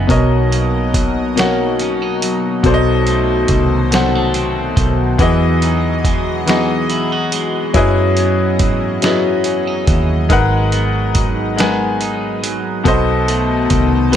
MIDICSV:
0, 0, Header, 1, 6, 480
1, 0, Start_track
1, 0, Key_signature, 5, "major"
1, 0, Tempo, 851064
1, 49, Time_signature, 6, 3, 24, 8
1, 7988, End_track
2, 0, Start_track
2, 0, Title_t, "Grand piano"
2, 0, Program_c, 0, 0
2, 0, Control_c, 0, 64, 127
2, 0, Note_on_c, 0, 75, 80
2, 0, Note_on_c, 0, 76, 79
2, 0, Note_on_c, 0, 78, 89
2, 41, Note_on_c, 0, 47, 82
2, 47, Note_on_c, 0, 54, 81
2, 54, Note_on_c, 0, 70, 76
2, 55, Control_c, 0, 64, 0
2, 58, Note_on_c, 0, 73, 76
2, 60, Note_off_c, 0, 75, 0
2, 60, Note_off_c, 0, 76, 0
2, 60, Note_off_c, 0, 78, 0
2, 64, Note_on_c, 0, 75, 96
2, 159, Control_c, 0, 64, 127
2, 513, Note_off_c, 0, 47, 0
2, 516, Note_off_c, 0, 54, 0
2, 520, Note_off_c, 0, 70, 0
2, 522, Note_off_c, 0, 73, 0
2, 525, Note_off_c, 0, 75, 0
2, 765, Note_on_c, 0, 47, 87
2, 771, Note_on_c, 0, 54, 74
2, 775, Note_on_c, 0, 70, 67
2, 783, Note_on_c, 0, 73, 76
2, 787, Note_on_c, 0, 78, 89
2, 1235, Note_off_c, 0, 47, 0
2, 1238, Note_off_c, 0, 54, 0
2, 1240, Note_off_c, 0, 70, 0
2, 1244, Note_off_c, 0, 73, 0
2, 1246, Note_off_c, 0, 78, 0
2, 1485, Note_on_c, 0, 47, 104
2, 1490, Note_on_c, 0, 54, 99
2, 1495, Control_c, 0, 64, 0
2, 1497, Note_on_c, 0, 69, 88
2, 1502, Note_on_c, 0, 72, 98
2, 1508, Note_on_c, 0, 74, 91
2, 1535, Note_off_c, 0, 74, 0
2, 1545, Note_on_c, 0, 75, 115
2, 1580, Control_c, 0, 64, 127
2, 1955, Note_off_c, 0, 47, 0
2, 1958, Note_off_c, 0, 54, 0
2, 1961, Note_off_c, 0, 69, 0
2, 1964, Note_off_c, 0, 72, 0
2, 1985, Note_off_c, 0, 75, 0
2, 2206, Note_on_c, 0, 47, 90
2, 2210, Note_on_c, 0, 54, 74
2, 2216, Note_on_c, 0, 69, 73
2, 2222, Note_on_c, 0, 72, 80
2, 2228, Note_on_c, 0, 78, 90
2, 2676, Note_off_c, 0, 47, 0
2, 2678, Note_off_c, 0, 54, 0
2, 2681, Note_off_c, 0, 69, 0
2, 2684, Note_off_c, 0, 72, 0
2, 2687, Note_off_c, 0, 78, 0
2, 2923, Note_on_c, 0, 52, 105
2, 2930, Note_on_c, 0, 59, 94
2, 2935, Note_on_c, 0, 66, 88
2, 2936, Control_c, 0, 64, 0
2, 2940, Note_on_c, 0, 68, 86
2, 2945, Note_on_c, 0, 75, 119
2, 3041, Control_c, 0, 64, 127
2, 3394, Note_off_c, 0, 52, 0
2, 3398, Note_off_c, 0, 59, 0
2, 3400, Note_off_c, 0, 66, 0
2, 3403, Note_off_c, 0, 68, 0
2, 3405, Note_off_c, 0, 75, 0
2, 3644, Note_on_c, 0, 52, 84
2, 3652, Note_on_c, 0, 59, 84
2, 3656, Note_on_c, 0, 66, 82
2, 3661, Note_on_c, 0, 68, 81
2, 3667, Note_on_c, 0, 75, 98
2, 4115, Note_off_c, 0, 52, 0
2, 4119, Note_off_c, 0, 59, 0
2, 4121, Note_off_c, 0, 66, 0
2, 4123, Note_off_c, 0, 68, 0
2, 4126, Note_off_c, 0, 75, 0
2, 4363, Note_on_c, 0, 54, 102
2, 4366, Note_on_c, 0, 61, 96
2, 4370, Note_on_c, 0, 64, 95
2, 4375, Note_on_c, 0, 68, 95
2, 4376, Control_c, 0, 64, 0
2, 4381, Note_on_c, 0, 71, 90
2, 4385, Note_on_c, 0, 75, 112
2, 4486, Control_c, 0, 64, 127
2, 4834, Note_off_c, 0, 54, 0
2, 4836, Note_off_c, 0, 61, 0
2, 4838, Note_off_c, 0, 64, 0
2, 4840, Note_off_c, 0, 68, 0
2, 4843, Note_off_c, 0, 71, 0
2, 4845, Note_off_c, 0, 75, 0
2, 5085, Note_on_c, 0, 54, 88
2, 5090, Note_on_c, 0, 61, 74
2, 5094, Note_on_c, 0, 64, 70
2, 5099, Note_on_c, 0, 68, 70
2, 5103, Note_on_c, 0, 71, 74
2, 5106, Note_on_c, 0, 75, 90
2, 5555, Note_off_c, 0, 54, 0
2, 5558, Note_off_c, 0, 61, 0
2, 5560, Note_off_c, 0, 64, 0
2, 5562, Note_off_c, 0, 68, 0
2, 5564, Note_off_c, 0, 71, 0
2, 5566, Note_off_c, 0, 75, 0
2, 5804, Note_on_c, 0, 56, 97
2, 5809, Note_on_c, 0, 63, 94
2, 5814, Note_on_c, 0, 70, 95
2, 5817, Control_c, 0, 64, 0
2, 5819, Note_on_c, 0, 71, 99
2, 5825, Note_on_c, 0, 78, 116
2, 5906, Control_c, 0, 64, 127
2, 6275, Note_off_c, 0, 56, 0
2, 6277, Note_off_c, 0, 63, 0
2, 6280, Note_off_c, 0, 70, 0
2, 6282, Note_off_c, 0, 71, 0
2, 6285, Note_off_c, 0, 78, 0
2, 6520, Note_on_c, 0, 56, 76
2, 6526, Note_on_c, 0, 63, 76
2, 6533, Note_on_c, 0, 70, 77
2, 6538, Note_on_c, 0, 71, 81
2, 6545, Note_on_c, 0, 80, 91
2, 6993, Note_off_c, 0, 56, 0
2, 6996, Note_off_c, 0, 63, 0
2, 6999, Note_off_c, 0, 70, 0
2, 7002, Note_off_c, 0, 71, 0
2, 7005, Note_off_c, 0, 80, 0
2, 7242, Note_on_c, 0, 47, 108
2, 7247, Note_on_c, 0, 59, 96
2, 7253, Note_on_c, 0, 69, 92
2, 7254, Control_c, 0, 64, 0
2, 7259, Note_on_c, 0, 72, 93
2, 7265, Note_on_c, 0, 75, 112
2, 7361, Control_c, 0, 64, 127
2, 7714, Note_off_c, 0, 47, 0
2, 7716, Note_off_c, 0, 59, 0
2, 7719, Note_off_c, 0, 69, 0
2, 7722, Note_off_c, 0, 72, 0
2, 7725, Note_off_c, 0, 75, 0
2, 7960, Note_on_c, 0, 47, 91
2, 7967, Note_on_c, 0, 71, 79
2, 7970, Note_on_c, 0, 69, 75
2, 7988, Note_off_c, 0, 47, 0
2, 7988, Note_off_c, 0, 69, 0
2, 7988, Note_off_c, 0, 71, 0
2, 7988, End_track
3, 0, Start_track
3, 0, Title_t, "Analog synth pad"
3, 0, Program_c, 1, 89
3, 41, Note_on_c, 1, 54, 80
3, 42, Note_on_c, 1, 66, 75
3, 44, Note_on_c, 1, 70, 78
3, 45, Note_on_c, 1, 63, 84
3, 46, Note_on_c, 1, 75, 90
3, 1471, Note_off_c, 1, 66, 0
3, 1472, Note_off_c, 1, 70, 0
3, 1473, Note_off_c, 1, 75, 0
3, 1477, Note_on_c, 1, 69, 71
3, 1484, Note_on_c, 1, 66, 73
3, 1485, Note_on_c, 1, 72, 89
3, 2904, Note_off_c, 1, 63, 0
3, 2908, Note_off_c, 1, 69, 0
3, 2912, Note_off_c, 1, 72, 0
3, 2917, Note_on_c, 1, 59, 78
3, 2917, Note_on_c, 1, 75, 101
3, 2919, Note_on_c, 1, 68, 80
3, 4348, Note_off_c, 1, 75, 0
3, 4367, Note_on_c, 1, 75, 99
3, 5780, Note_off_c, 1, 59, 0
3, 5813, Note_on_c, 1, 63, 74
3, 7222, Note_off_c, 1, 54, 0
3, 7222, Note_off_c, 1, 68, 0
3, 7225, Note_off_c, 1, 75, 0
3, 7236, Note_off_c, 1, 63, 0
3, 7243, Note_on_c, 1, 63, 79
3, 7245, Note_on_c, 1, 47, 89
3, 7247, Note_on_c, 1, 75, 102
3, 7248, Note_on_c, 1, 69, 84
3, 7988, Note_off_c, 1, 47, 0
3, 7988, Note_off_c, 1, 63, 0
3, 7988, Note_off_c, 1, 66, 0
3, 7988, Note_off_c, 1, 69, 0
3, 7988, Note_off_c, 1, 75, 0
3, 7988, End_track
4, 0, Start_track
4, 0, Title_t, "Clean electric guitar"
4, 0, Program_c, 2, 27
4, 0, Note_on_c, 2, 42, 82
4, 0, Note_on_c, 2, 59, 56
4, 0, Note_on_c, 2, 63, 64
4, 0, Note_on_c, 2, 66, 63
4, 56, Note_on_c, 2, 47, 86
4, 100, Note_off_c, 2, 42, 0
4, 289, Note_off_c, 2, 59, 0
4, 292, Note_on_c, 2, 58, 57
4, 340, Note_off_c, 2, 66, 0
4, 532, Note_on_c, 2, 54, 58
4, 766, Note_off_c, 2, 58, 0
4, 773, Note_on_c, 2, 58, 64
4, 1016, Note_off_c, 2, 63, 0
4, 1018, Note_on_c, 2, 61, 67
4, 1138, Note_off_c, 2, 61, 0
4, 1138, Note_on_c, 2, 63, 62
4, 1259, Note_off_c, 2, 54, 0
4, 1261, Note_on_c, 2, 54, 61
4, 1492, Note_off_c, 2, 47, 0
4, 1508, Note_on_c, 2, 47, 87
4, 1539, Note_off_c, 2, 58, 0
4, 1541, Note_off_c, 2, 63, 0
4, 1747, Note_on_c, 2, 57, 61
4, 1984, Note_off_c, 2, 54, 0
4, 1986, Note_on_c, 2, 51, 51
4, 2217, Note_off_c, 2, 57, 0
4, 2219, Note_on_c, 2, 55, 61
4, 2342, Note_off_c, 2, 55, 0
4, 2342, Note_on_c, 2, 57, 51
4, 2451, Note_on_c, 2, 60, 64
4, 2684, Note_off_c, 2, 51, 0
4, 2686, Note_on_c, 2, 51, 64
4, 2930, Note_off_c, 2, 51, 0
4, 2933, Note_on_c, 2, 52, 92
4, 2938, Note_off_c, 2, 47, 0
4, 2978, Note_off_c, 2, 60, 0
4, 2983, Note_off_c, 2, 57, 0
4, 3174, Note_on_c, 2, 63, 65
4, 3420, Note_on_c, 2, 56, 56
4, 3648, Note_off_c, 2, 63, 0
4, 3650, Note_on_c, 2, 63, 70
4, 3893, Note_on_c, 2, 64, 62
4, 4016, Note_off_c, 2, 64, 0
4, 4016, Note_on_c, 2, 66, 70
4, 4134, Note_off_c, 2, 56, 0
4, 4136, Note_on_c, 2, 56, 66
4, 4374, Note_on_c, 2, 42, 95
4, 4391, Note_off_c, 2, 52, 0
4, 4421, Note_off_c, 2, 66, 0
4, 4615, Note_off_c, 2, 56, 0
4, 4617, Note_on_c, 2, 59, 57
4, 4854, Note_on_c, 2, 52, 55
4, 4871, Note_off_c, 2, 63, 0
4, 5092, Note_off_c, 2, 59, 0
4, 5095, Note_on_c, 2, 59, 62
4, 5333, Note_on_c, 2, 61, 64
4, 5455, Note_off_c, 2, 61, 0
4, 5455, Note_on_c, 2, 63, 59
4, 5562, Note_off_c, 2, 52, 0
4, 5569, Note_on_c, 2, 52, 61
4, 5811, Note_off_c, 2, 42, 0
4, 5817, Note_on_c, 2, 44, 92
4, 5857, Note_off_c, 2, 52, 0
4, 5860, Note_off_c, 2, 63, 0
4, 6049, Note_off_c, 2, 59, 0
4, 6051, Note_on_c, 2, 59, 63
4, 6285, Note_on_c, 2, 54, 56
4, 6526, Note_off_c, 2, 59, 0
4, 6528, Note_on_c, 2, 59, 64
4, 6770, Note_on_c, 2, 63, 64
4, 7008, Note_off_c, 2, 54, 0
4, 7010, Note_on_c, 2, 54, 60
4, 7247, Note_on_c, 2, 47, 90
4, 7253, Note_off_c, 2, 44, 0
4, 7488, Note_off_c, 2, 59, 0
4, 7491, Note_on_c, 2, 57, 60
4, 7508, Note_off_c, 2, 63, 0
4, 7728, Note_off_c, 2, 54, 0
4, 7730, Note_on_c, 2, 51, 62
4, 7961, Note_off_c, 2, 57, 0
4, 7964, Note_on_c, 2, 55, 67
4, 7988, Note_off_c, 2, 47, 0
4, 7988, Note_off_c, 2, 51, 0
4, 7988, Note_off_c, 2, 55, 0
4, 7988, End_track
5, 0, Start_track
5, 0, Title_t, "Fingered electric bass"
5, 0, Program_c, 3, 33
5, 54, Note_on_c, 3, 35, 101
5, 1469, Note_off_c, 3, 35, 0
5, 1492, Note_on_c, 3, 35, 100
5, 1948, Note_off_c, 3, 35, 0
5, 1972, Note_on_c, 3, 36, 88
5, 2668, Note_off_c, 3, 36, 0
5, 2691, Note_on_c, 3, 35, 88
5, 2907, Note_off_c, 3, 35, 0
5, 2928, Note_on_c, 3, 40, 99
5, 4346, Note_off_c, 3, 40, 0
5, 4371, Note_on_c, 3, 42, 101
5, 4851, Note_off_c, 3, 42, 0
5, 4851, Note_on_c, 3, 44, 88
5, 5547, Note_off_c, 3, 44, 0
5, 5571, Note_on_c, 3, 39, 90
5, 5811, Note_on_c, 3, 32, 104
5, 5820, Note_off_c, 3, 39, 0
5, 7227, Note_off_c, 3, 32, 0
5, 7253, Note_on_c, 3, 35, 86
5, 7708, Note_off_c, 3, 35, 0
5, 7734, Note_on_c, 3, 36, 87
5, 7988, Note_off_c, 3, 36, 0
5, 7988, End_track
6, 0, Start_track
6, 0, Title_t, "Drums"
6, 51, Note_on_c, 9, 36, 108
6, 56, Note_on_c, 9, 42, 70
6, 107, Note_off_c, 9, 36, 0
6, 112, Note_off_c, 9, 42, 0
6, 295, Note_on_c, 9, 42, 50
6, 352, Note_off_c, 9, 42, 0
6, 532, Note_on_c, 9, 36, 96
6, 532, Note_on_c, 9, 42, 85
6, 588, Note_off_c, 9, 36, 0
6, 589, Note_off_c, 9, 42, 0
6, 775, Note_on_c, 9, 42, 73
6, 786, Note_on_c, 9, 38, 110
6, 832, Note_off_c, 9, 42, 0
6, 842, Note_off_c, 9, 38, 0
6, 1012, Note_on_c, 9, 42, 55
6, 1069, Note_off_c, 9, 42, 0
6, 1254, Note_on_c, 9, 42, 82
6, 1310, Note_off_c, 9, 42, 0
6, 1488, Note_on_c, 9, 36, 124
6, 1489, Note_on_c, 9, 42, 73
6, 1544, Note_off_c, 9, 36, 0
6, 1545, Note_off_c, 9, 42, 0
6, 1730, Note_on_c, 9, 42, 50
6, 1786, Note_off_c, 9, 42, 0
6, 1964, Note_on_c, 9, 42, 81
6, 1969, Note_on_c, 9, 36, 96
6, 2020, Note_off_c, 9, 42, 0
6, 2025, Note_off_c, 9, 36, 0
6, 2211, Note_on_c, 9, 42, 74
6, 2222, Note_on_c, 9, 38, 109
6, 2268, Note_off_c, 9, 42, 0
6, 2278, Note_off_c, 9, 38, 0
6, 2449, Note_on_c, 9, 42, 54
6, 2505, Note_off_c, 9, 42, 0
6, 2690, Note_on_c, 9, 36, 102
6, 2691, Note_on_c, 9, 42, 77
6, 2746, Note_off_c, 9, 36, 0
6, 2747, Note_off_c, 9, 42, 0
6, 2927, Note_on_c, 9, 36, 120
6, 2927, Note_on_c, 9, 42, 69
6, 2984, Note_off_c, 9, 36, 0
6, 2984, Note_off_c, 9, 42, 0
6, 3170, Note_on_c, 9, 42, 56
6, 3227, Note_off_c, 9, 42, 0
6, 3410, Note_on_c, 9, 36, 94
6, 3412, Note_on_c, 9, 42, 83
6, 3467, Note_off_c, 9, 36, 0
6, 3468, Note_off_c, 9, 42, 0
6, 3652, Note_on_c, 9, 42, 73
6, 3663, Note_on_c, 9, 38, 112
6, 3709, Note_off_c, 9, 42, 0
6, 3719, Note_off_c, 9, 38, 0
6, 3889, Note_on_c, 9, 42, 57
6, 3946, Note_off_c, 9, 42, 0
6, 4129, Note_on_c, 9, 42, 80
6, 4186, Note_off_c, 9, 42, 0
6, 4367, Note_on_c, 9, 42, 77
6, 4368, Note_on_c, 9, 36, 122
6, 4423, Note_off_c, 9, 42, 0
6, 4425, Note_off_c, 9, 36, 0
6, 4606, Note_on_c, 9, 42, 56
6, 4662, Note_off_c, 9, 42, 0
6, 4847, Note_on_c, 9, 42, 77
6, 4849, Note_on_c, 9, 36, 99
6, 4903, Note_off_c, 9, 42, 0
6, 4906, Note_off_c, 9, 36, 0
6, 5088, Note_on_c, 9, 42, 76
6, 5099, Note_on_c, 9, 38, 123
6, 5145, Note_off_c, 9, 42, 0
6, 5155, Note_off_c, 9, 38, 0
6, 5325, Note_on_c, 9, 42, 54
6, 5381, Note_off_c, 9, 42, 0
6, 5569, Note_on_c, 9, 42, 70
6, 5570, Note_on_c, 9, 36, 90
6, 5626, Note_off_c, 9, 36, 0
6, 5626, Note_off_c, 9, 42, 0
6, 5808, Note_on_c, 9, 36, 125
6, 5809, Note_on_c, 9, 42, 77
6, 5865, Note_off_c, 9, 36, 0
6, 5865, Note_off_c, 9, 42, 0
6, 6047, Note_on_c, 9, 42, 54
6, 6104, Note_off_c, 9, 42, 0
6, 6287, Note_on_c, 9, 42, 84
6, 6290, Note_on_c, 9, 36, 90
6, 6344, Note_off_c, 9, 42, 0
6, 6346, Note_off_c, 9, 36, 0
6, 6534, Note_on_c, 9, 42, 73
6, 6544, Note_on_c, 9, 38, 113
6, 6590, Note_off_c, 9, 42, 0
6, 6601, Note_off_c, 9, 38, 0
6, 6772, Note_on_c, 9, 42, 58
6, 6828, Note_off_c, 9, 42, 0
6, 7014, Note_on_c, 9, 42, 83
6, 7070, Note_off_c, 9, 42, 0
6, 7250, Note_on_c, 9, 36, 123
6, 7252, Note_on_c, 9, 42, 76
6, 7306, Note_off_c, 9, 36, 0
6, 7309, Note_off_c, 9, 42, 0
6, 7492, Note_on_c, 9, 42, 58
6, 7548, Note_off_c, 9, 42, 0
6, 7728, Note_on_c, 9, 42, 83
6, 7731, Note_on_c, 9, 36, 95
6, 7784, Note_off_c, 9, 42, 0
6, 7787, Note_off_c, 9, 36, 0
6, 7970, Note_on_c, 9, 42, 75
6, 7988, Note_off_c, 9, 42, 0
6, 7988, End_track
0, 0, End_of_file